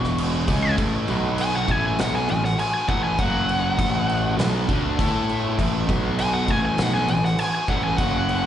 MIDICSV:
0, 0, Header, 1, 5, 480
1, 0, Start_track
1, 0, Tempo, 601202
1, 622, Time_signature, 4, 2, 24, 8
1, 6756, End_track
2, 0, Start_track
2, 0, Title_t, "Lead electric guitar"
2, 0, Program_c, 0, 29
2, 0, Note_on_c, 0, 85, 107
2, 598, Note_off_c, 0, 85, 0
2, 1128, Note_on_c, 0, 80, 121
2, 1232, Note_off_c, 0, 80, 0
2, 1246, Note_on_c, 0, 78, 95
2, 1365, Note_off_c, 0, 78, 0
2, 1365, Note_on_c, 0, 80, 90
2, 1471, Note_off_c, 0, 80, 0
2, 1485, Note_on_c, 0, 80, 118
2, 1591, Note_off_c, 0, 80, 0
2, 1604, Note_on_c, 0, 78, 95
2, 1710, Note_off_c, 0, 78, 0
2, 1720, Note_on_c, 0, 80, 96
2, 1828, Note_off_c, 0, 80, 0
2, 1840, Note_on_c, 0, 80, 93
2, 1948, Note_off_c, 0, 80, 0
2, 1956, Note_on_c, 0, 78, 103
2, 2066, Note_off_c, 0, 78, 0
2, 2072, Note_on_c, 0, 80, 105
2, 2178, Note_off_c, 0, 80, 0
2, 2188, Note_on_c, 0, 80, 95
2, 2302, Note_off_c, 0, 80, 0
2, 2307, Note_on_c, 0, 78, 108
2, 2421, Note_off_c, 0, 78, 0
2, 2424, Note_on_c, 0, 80, 82
2, 2547, Note_off_c, 0, 80, 0
2, 2547, Note_on_c, 0, 78, 112
2, 3476, Note_off_c, 0, 78, 0
2, 4949, Note_on_c, 0, 80, 111
2, 5060, Note_off_c, 0, 80, 0
2, 5063, Note_on_c, 0, 78, 96
2, 5193, Note_off_c, 0, 78, 0
2, 5193, Note_on_c, 0, 80, 101
2, 5303, Note_off_c, 0, 80, 0
2, 5313, Note_on_c, 0, 80, 94
2, 5449, Note_off_c, 0, 80, 0
2, 5449, Note_on_c, 0, 78, 106
2, 5540, Note_off_c, 0, 78, 0
2, 5543, Note_on_c, 0, 80, 108
2, 5658, Note_off_c, 0, 80, 0
2, 5671, Note_on_c, 0, 80, 103
2, 5781, Note_off_c, 0, 80, 0
2, 5787, Note_on_c, 0, 78, 110
2, 5899, Note_off_c, 0, 78, 0
2, 5899, Note_on_c, 0, 80, 117
2, 6016, Note_off_c, 0, 80, 0
2, 6025, Note_on_c, 0, 80, 100
2, 6138, Note_off_c, 0, 80, 0
2, 6146, Note_on_c, 0, 78, 96
2, 6257, Note_off_c, 0, 78, 0
2, 6260, Note_on_c, 0, 80, 90
2, 6363, Note_off_c, 0, 80, 0
2, 6363, Note_on_c, 0, 78, 126
2, 6756, Note_off_c, 0, 78, 0
2, 6756, End_track
3, 0, Start_track
3, 0, Title_t, "Distorted electric guitar"
3, 0, Program_c, 1, 30
3, 0, Note_on_c, 1, 40, 88
3, 0, Note_on_c, 1, 47, 110
3, 0, Note_on_c, 1, 52, 115
3, 373, Note_off_c, 1, 40, 0
3, 377, Note_off_c, 1, 47, 0
3, 379, Note_off_c, 1, 52, 0
3, 380, Note_on_c, 1, 49, 89
3, 382, Note_on_c, 1, 56, 105
3, 387, Note_on_c, 1, 61, 114
3, 614, Note_off_c, 1, 49, 0
3, 615, Note_off_c, 1, 56, 0
3, 615, Note_on_c, 1, 45, 96
3, 617, Note_off_c, 1, 61, 0
3, 621, Note_on_c, 1, 52, 105
3, 621, Note_on_c, 1, 57, 120
3, 851, Note_off_c, 1, 45, 0
3, 855, Note_off_c, 1, 52, 0
3, 855, Note_off_c, 1, 57, 0
3, 862, Note_on_c, 1, 47, 102
3, 868, Note_on_c, 1, 54, 95
3, 870, Note_on_c, 1, 59, 101
3, 1334, Note_off_c, 1, 47, 0
3, 1337, Note_on_c, 1, 45, 88
3, 1338, Note_off_c, 1, 54, 0
3, 1340, Note_off_c, 1, 59, 0
3, 1343, Note_on_c, 1, 52, 104
3, 1346, Note_on_c, 1, 57, 116
3, 1573, Note_off_c, 1, 45, 0
3, 1576, Note_off_c, 1, 52, 0
3, 1577, Note_off_c, 1, 57, 0
3, 1588, Note_on_c, 1, 47, 98
3, 1594, Note_on_c, 1, 54, 106
3, 1599, Note_on_c, 1, 59, 122
3, 1819, Note_off_c, 1, 47, 0
3, 1821, Note_off_c, 1, 54, 0
3, 1824, Note_off_c, 1, 59, 0
3, 1827, Note_on_c, 1, 45, 75
3, 1827, Note_on_c, 1, 52, 82
3, 2017, Note_off_c, 1, 45, 0
3, 2017, Note_off_c, 1, 52, 0
3, 2298, Note_on_c, 1, 45, 94
3, 2306, Note_on_c, 1, 52, 103
3, 2311, Note_on_c, 1, 57, 108
3, 2533, Note_off_c, 1, 45, 0
3, 2537, Note_off_c, 1, 52, 0
3, 2539, Note_off_c, 1, 57, 0
3, 2544, Note_on_c, 1, 42, 100
3, 2551, Note_on_c, 1, 49, 106
3, 2553, Note_on_c, 1, 54, 120
3, 3008, Note_off_c, 1, 42, 0
3, 3011, Note_on_c, 1, 45, 106
3, 3015, Note_off_c, 1, 49, 0
3, 3018, Note_on_c, 1, 52, 107
3, 3019, Note_off_c, 1, 54, 0
3, 3022, Note_on_c, 1, 57, 117
3, 3489, Note_off_c, 1, 45, 0
3, 3493, Note_off_c, 1, 52, 0
3, 3495, Note_off_c, 1, 57, 0
3, 3499, Note_on_c, 1, 47, 88
3, 3502, Note_on_c, 1, 54, 106
3, 3510, Note_on_c, 1, 59, 99
3, 3733, Note_off_c, 1, 47, 0
3, 3734, Note_off_c, 1, 54, 0
3, 3738, Note_on_c, 1, 50, 102
3, 3739, Note_off_c, 1, 59, 0
3, 3745, Note_on_c, 1, 57, 101
3, 3748, Note_on_c, 1, 62, 123
3, 3965, Note_off_c, 1, 57, 0
3, 3973, Note_off_c, 1, 50, 0
3, 3975, Note_on_c, 1, 57, 103
3, 3977, Note_off_c, 1, 62, 0
3, 3981, Note_on_c, 1, 64, 109
3, 3982, Note_on_c, 1, 69, 106
3, 4450, Note_off_c, 1, 57, 0
3, 4451, Note_on_c, 1, 45, 97
3, 4453, Note_off_c, 1, 64, 0
3, 4454, Note_off_c, 1, 69, 0
3, 4462, Note_on_c, 1, 52, 114
3, 4468, Note_on_c, 1, 57, 101
3, 4686, Note_off_c, 1, 45, 0
3, 4689, Note_on_c, 1, 47, 93
3, 4694, Note_off_c, 1, 52, 0
3, 4697, Note_off_c, 1, 57, 0
3, 4698, Note_on_c, 1, 54, 101
3, 4701, Note_on_c, 1, 59, 105
3, 5167, Note_off_c, 1, 47, 0
3, 5170, Note_on_c, 1, 45, 93
3, 5171, Note_off_c, 1, 54, 0
3, 5173, Note_off_c, 1, 59, 0
3, 5178, Note_on_c, 1, 52, 100
3, 5184, Note_on_c, 1, 57, 96
3, 5408, Note_off_c, 1, 45, 0
3, 5411, Note_off_c, 1, 52, 0
3, 5415, Note_off_c, 1, 57, 0
3, 5420, Note_on_c, 1, 47, 99
3, 5424, Note_on_c, 1, 54, 103
3, 5428, Note_on_c, 1, 59, 118
3, 5652, Note_off_c, 1, 47, 0
3, 5654, Note_off_c, 1, 54, 0
3, 5656, Note_off_c, 1, 59, 0
3, 5664, Note_on_c, 1, 45, 75
3, 5667, Note_on_c, 1, 52, 89
3, 5854, Note_off_c, 1, 45, 0
3, 5855, Note_off_c, 1, 52, 0
3, 6140, Note_on_c, 1, 45, 103
3, 6143, Note_on_c, 1, 52, 106
3, 6145, Note_on_c, 1, 57, 113
3, 6371, Note_off_c, 1, 45, 0
3, 6373, Note_off_c, 1, 52, 0
3, 6374, Note_on_c, 1, 42, 106
3, 6375, Note_off_c, 1, 57, 0
3, 6385, Note_on_c, 1, 49, 111
3, 6389, Note_on_c, 1, 54, 121
3, 6756, Note_off_c, 1, 42, 0
3, 6756, Note_off_c, 1, 49, 0
3, 6756, Note_off_c, 1, 54, 0
3, 6756, End_track
4, 0, Start_track
4, 0, Title_t, "Picked electric bass"
4, 0, Program_c, 2, 34
4, 0, Note_on_c, 2, 28, 105
4, 350, Note_off_c, 2, 28, 0
4, 379, Note_on_c, 2, 37, 101
4, 604, Note_off_c, 2, 37, 0
4, 623, Note_on_c, 2, 33, 95
4, 846, Note_off_c, 2, 33, 0
4, 869, Note_on_c, 2, 35, 103
4, 1314, Note_off_c, 2, 35, 0
4, 1342, Note_on_c, 2, 33, 105
4, 1566, Note_off_c, 2, 33, 0
4, 1590, Note_on_c, 2, 35, 100
4, 1810, Note_off_c, 2, 35, 0
4, 1837, Note_on_c, 2, 33, 88
4, 2053, Note_off_c, 2, 33, 0
4, 2306, Note_on_c, 2, 33, 107
4, 2528, Note_off_c, 2, 33, 0
4, 2544, Note_on_c, 2, 30, 85
4, 2991, Note_off_c, 2, 30, 0
4, 3023, Note_on_c, 2, 33, 92
4, 3470, Note_off_c, 2, 33, 0
4, 3490, Note_on_c, 2, 35, 98
4, 3719, Note_off_c, 2, 35, 0
4, 3742, Note_on_c, 2, 38, 112
4, 3965, Note_off_c, 2, 38, 0
4, 3984, Note_on_c, 2, 45, 87
4, 4430, Note_off_c, 2, 45, 0
4, 4460, Note_on_c, 2, 33, 99
4, 4683, Note_off_c, 2, 33, 0
4, 4701, Note_on_c, 2, 35, 101
4, 5148, Note_off_c, 2, 35, 0
4, 5179, Note_on_c, 2, 33, 104
4, 5398, Note_off_c, 2, 33, 0
4, 5403, Note_on_c, 2, 35, 100
4, 5634, Note_off_c, 2, 35, 0
4, 5641, Note_on_c, 2, 33, 87
4, 5872, Note_off_c, 2, 33, 0
4, 6133, Note_on_c, 2, 33, 100
4, 6359, Note_off_c, 2, 33, 0
4, 6373, Note_on_c, 2, 30, 99
4, 6756, Note_off_c, 2, 30, 0
4, 6756, End_track
5, 0, Start_track
5, 0, Title_t, "Drums"
5, 30, Note_on_c, 9, 38, 36
5, 110, Note_off_c, 9, 38, 0
5, 146, Note_on_c, 9, 49, 103
5, 226, Note_off_c, 9, 49, 0
5, 383, Note_on_c, 9, 36, 105
5, 384, Note_on_c, 9, 49, 106
5, 463, Note_off_c, 9, 36, 0
5, 463, Note_off_c, 9, 49, 0
5, 624, Note_on_c, 9, 36, 115
5, 624, Note_on_c, 9, 49, 96
5, 703, Note_off_c, 9, 36, 0
5, 704, Note_off_c, 9, 49, 0
5, 862, Note_on_c, 9, 49, 67
5, 942, Note_off_c, 9, 49, 0
5, 1102, Note_on_c, 9, 49, 91
5, 1182, Note_off_c, 9, 49, 0
5, 1345, Note_on_c, 9, 36, 105
5, 1348, Note_on_c, 9, 49, 66
5, 1424, Note_off_c, 9, 36, 0
5, 1428, Note_off_c, 9, 49, 0
5, 1586, Note_on_c, 9, 49, 92
5, 1594, Note_on_c, 9, 38, 117
5, 1666, Note_off_c, 9, 49, 0
5, 1674, Note_off_c, 9, 38, 0
5, 1826, Note_on_c, 9, 49, 68
5, 1906, Note_off_c, 9, 49, 0
5, 1954, Note_on_c, 9, 38, 36
5, 2034, Note_off_c, 9, 38, 0
5, 2068, Note_on_c, 9, 49, 97
5, 2148, Note_off_c, 9, 49, 0
5, 2305, Note_on_c, 9, 36, 114
5, 2305, Note_on_c, 9, 49, 66
5, 2384, Note_off_c, 9, 49, 0
5, 2385, Note_off_c, 9, 36, 0
5, 2545, Note_on_c, 9, 36, 110
5, 2547, Note_on_c, 9, 49, 86
5, 2625, Note_off_c, 9, 36, 0
5, 2627, Note_off_c, 9, 49, 0
5, 2787, Note_on_c, 9, 49, 66
5, 2867, Note_off_c, 9, 49, 0
5, 3023, Note_on_c, 9, 36, 116
5, 3024, Note_on_c, 9, 49, 92
5, 3103, Note_off_c, 9, 36, 0
5, 3104, Note_off_c, 9, 49, 0
5, 3269, Note_on_c, 9, 49, 63
5, 3349, Note_off_c, 9, 49, 0
5, 3504, Note_on_c, 9, 49, 89
5, 3512, Note_on_c, 9, 38, 116
5, 3583, Note_off_c, 9, 49, 0
5, 3591, Note_off_c, 9, 38, 0
5, 3744, Note_on_c, 9, 36, 116
5, 3747, Note_on_c, 9, 49, 70
5, 3823, Note_off_c, 9, 36, 0
5, 3827, Note_off_c, 9, 49, 0
5, 3984, Note_on_c, 9, 36, 125
5, 3993, Note_on_c, 9, 49, 95
5, 4064, Note_off_c, 9, 36, 0
5, 4073, Note_off_c, 9, 49, 0
5, 4226, Note_on_c, 9, 49, 63
5, 4306, Note_off_c, 9, 49, 0
5, 4461, Note_on_c, 9, 36, 110
5, 4466, Note_on_c, 9, 49, 96
5, 4541, Note_off_c, 9, 36, 0
5, 4546, Note_off_c, 9, 49, 0
5, 4702, Note_on_c, 9, 36, 115
5, 4705, Note_on_c, 9, 49, 74
5, 4781, Note_off_c, 9, 36, 0
5, 4785, Note_off_c, 9, 49, 0
5, 4939, Note_on_c, 9, 49, 100
5, 5019, Note_off_c, 9, 49, 0
5, 5177, Note_on_c, 9, 36, 106
5, 5177, Note_on_c, 9, 49, 75
5, 5257, Note_off_c, 9, 36, 0
5, 5257, Note_off_c, 9, 49, 0
5, 5414, Note_on_c, 9, 49, 103
5, 5422, Note_on_c, 9, 38, 121
5, 5494, Note_off_c, 9, 49, 0
5, 5502, Note_off_c, 9, 38, 0
5, 5656, Note_on_c, 9, 49, 67
5, 5735, Note_off_c, 9, 49, 0
5, 5788, Note_on_c, 9, 38, 34
5, 5868, Note_off_c, 9, 38, 0
5, 5896, Note_on_c, 9, 49, 103
5, 5976, Note_off_c, 9, 49, 0
5, 6134, Note_on_c, 9, 36, 108
5, 6136, Note_on_c, 9, 49, 64
5, 6214, Note_off_c, 9, 36, 0
5, 6216, Note_off_c, 9, 49, 0
5, 6375, Note_on_c, 9, 36, 108
5, 6376, Note_on_c, 9, 49, 90
5, 6455, Note_off_c, 9, 36, 0
5, 6456, Note_off_c, 9, 49, 0
5, 6618, Note_on_c, 9, 49, 66
5, 6698, Note_off_c, 9, 49, 0
5, 6756, End_track
0, 0, End_of_file